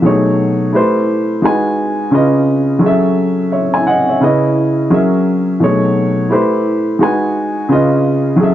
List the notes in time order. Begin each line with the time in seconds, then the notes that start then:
0.02 B2 F#3 A3 D#4 G#4
0.06 C#5
0.73 A3 E4 G4 B4 C5
1.42 G#3 D#4 F#4 B4 G#5
2.11 C#3 C#4 F4 B4 D#5
2.79 F#3 C#4 G#4
2.84 A4 E5
3.52 C#5 E5
3.74 E5 G#5
3.87 D#5 F#5
4.09 C#5 E5
4.21 C#3 C#4 E4 B4 D#5
4.90 F#3 C#4 G#4 A#4 E5
5.60 B2 F#3 A3 D#4 G#4 C#5
6.29 A3 E4 G4 B4 C5
6.99 G#3 D#4 F#4 B4 G#5
7.69 C#3 C#4 F4 B4 D#5
8.36 F#3 C#4 G#4
8.42 A4 E5